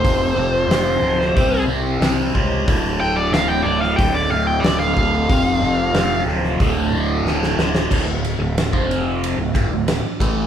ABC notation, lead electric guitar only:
X:1
M:4/4
L:1/16
Q:1/4=92
K:Dm
V:1 name="Lead electric guitar"
c8- c2 z6 | z2 g d f g d f g d f g d f f2- | f6 z8 z2 | z16 |]